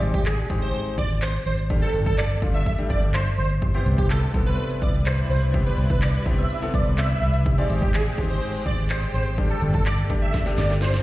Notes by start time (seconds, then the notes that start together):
Already playing: G#3 C4 D#4 G4
0.01 G#1, closed hi-hat
0.14 G4, kick, closed hi-hat
0.26 G#4, clap, closed hi-hat
0.38 closed hi-hat
0.50 G#1 G#3 C4 D#4 G4, kick, closed hi-hat
0.62 C5, closed hi-hat
0.74 closed hi-hat
0.86 closed hi-hat
0.98 G#1 D5, kick, closed hi-hat
1.10 closed hi-hat
1.22 C5, clap, closed hi-hat
1.34 closed hi-hat
1.46 G#1 C5, open hi-hat
1.58 closed hi-hat
1.70 G3 A3 D4 G4, kick, closed hi-hat
1.82 A4, closed hi-hat
1.94 G1, closed hi-hat
2.06 A4, kick, closed hi-hat
2.18 D5, clap, closed hi-hat
2.30 closed hi-hat
2.42 G1 G3 A3 D4 F4, kick, closed hi-hat
2.54 E5, closed hi-hat
2.66 kick, closed hi-hat
2.78 G3 A3 D4 G4, closed hi-hat
2.90 G1 D5, kick, closed hi-hat
3.02 closed hi-hat
3.14 C5, clap, closed hi-hat
3.26 closed hi-hat
3.38 G1 C5, open hi-hat
3.50 closed hi-hat
3.62 C3 G3 D4 E4 G4 B4, kick, closed hi-hat
3.74 B3 C4 E4 G4 C5, closed hi-hat
3.86 C2, closed hi-hat
3.98 G4, kick, closed hi-hat
4.10 A4, clap, closed hi-hat
4.22 closed hi-hat
4.34 C2 B3 C4 E4 A4, kick, closed hi-hat
4.46 B4, closed hi-hat
4.58 closed hi-hat
4.70 closed hi-hat
4.82 C2 D5, kick, closed hi-hat
4.94 closed hi-hat
5.06 C5, clap, closed hi-hat
5.18 closed hi-hat
5.30 C2 C5, open hi-hat
5.42 closed hi-hat
5.54 B3 C4 E4 G4, kick, closed hi-hat
5.66 B4, closed hi-hat
5.78 C2, closed hi-hat
5.90 B4, kick, closed hi-hat
6.02 D5, clap, closed hi-hat
6.14 closed hi-hat
6.26 C2 B3 C4 E4 G4, kick, closed hi-hat
6.38 E5, closed hi-hat
6.50 closed hi-hat
6.62 B3 C4 E4 A4, closed hi-hat
6.74 C2 D5, kick, closed hi-hat
6.86 closed hi-hat
6.98 E5, clap, closed hi-hat
7.10 closed hi-hat
7.22 C2, open hi-hat
7.34 closed hi-hat
7.46 G#3 C4 D#4 G4, kick, closed hi-hat
7.58 G#3 C4 D#4 G4 D5, closed hi-hat
7.70 G#1, closed hi-hat
7.82 G4, kick, closed hi-hat
7.94 G#4, clap, closed hi-hat
8.06 closed hi-hat
8.18 G#1 G#3 C4 D#4 G4, kick, closed hi-hat
8.30 C5, closed hi-hat
8.42 closed hi-hat
8.54 closed hi-hat
8.66 G#1 D5, kick, closed hi-hat
8.78 closed hi-hat
8.90 C5, clap, closed hi-hat
9.02 closed hi-hat
9.14 G#1 C5, open hi-hat
9.26 closed hi-hat
9.38 G3 A3 D4 G4, kick, closed hi-hat
9.50 A4, closed hi-hat
9.62 G1, closed hi-hat
9.74 A4, kick, closed hi-hat
9.86 D5, clap, closed hi-hat
9.98 closed hi-hat
10.10 G1 G3 A3 D4 G4, kick, closed hi-hat
10.22 E5, closed hi-hat
10.34 kick, snare, closed hi-hat
10.46 G3 A3 D4 G4, snare, closed hi-hat
10.58 G1 D5, snare, closed hi-hat
10.70 snare, closed hi-hat
10.82 C5, snare, closed hi-hat
10.94 snare, closed hi-hat